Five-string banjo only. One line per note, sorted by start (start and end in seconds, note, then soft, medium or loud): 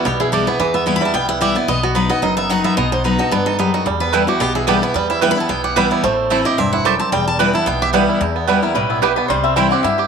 0.00 0.30 G3 medium
0.00 0.17 E4 medium
0.05 0.47 B3 medium
0.20 0.57 E4 medium
0.33 0.72 G4 medium
0.48 0.74 B3 medium
0.60 0.99 E3 medium
0.75 1.14 B3 medium
0.87 1.26 E4 medium
1.02 1.39 G3 medium
1.14 1.56 B3 medium
1.29 1.66 E4 soft
1.42 1.69 G4 medium
1.56 1.69 B3 medium
1.69 1.83 B3 medium
1.83 1.96 B3 medium
1.96 2.10 B3 medium
2.10 2.38 B3 medium
2.23 2.49 D#4 medium
2.38 2.65 B3 medium
2.50 2.89 D#4 medium
2.65 2.77 B3 medium
2.78 3.04 B3 medium
2.92 3.19 D#4 medium
3.05 3.32 B3 medium
3.20 3.46 D#4 medium
3.32 3.60 B3 medium
3.47 3.73 D#4 medium
3.60 3.86 B3 medium
3.74 3.86 D#4 medium
3.87 4.25 G3 medium
4.01 4.38 B3 medium
4.14 4.55 E4 medium
4.29 4.65 G4 medium
4.41 4.80 B3 medium
4.56 5.10 E4 soft
4.68 5.07 G4 medium
4.83 5.20 B3 medium
4.96 5.22 G3 medium
5.10 5.37 E4 medium
5.23 5.61 G3 medium
5.37 5.91 E4 medium
5.50 5.88 B3 medium
5.64 6.01 G4 medium
5.77 6.04 G3 medium
5.92 6.31 E4 medium
6.04 6.43 A3 medium
6.32 6.73 E4 medium
6.46 6.83 G4 medium
6.59 6.97 C4 medium
6.73 7.54 E4 medium
6.86 7.13 G4 medium
7.00 7.13 C4 medium
7.13 7.39 G3 medium
7.40 7.79 G3 medium
7.55 7.91 E4 medium
7.67 8.06 B3 medium
7.82 8.19 G4 medium
7.94 8.21 G3 medium
8.09 8.20 E4 medium
8.21 8.63 E4 medium
8.36 8.73 B3 medium
8.48 8.75 G3 medium
8.63 9.57 E4 medium
8.76 9.30 G3 medium
8.90 9.16 B3 medium
9.03 9.71 G4 medium
9.18 9.30 B3 medium
9.30 9.69 G3 medium
9.45 9.82 C4 medium
9.57 9.83 E4 medium
9.72 9.98 G4 medium
9.84 10.07 E4 medium
9.99 10.07 G4 medium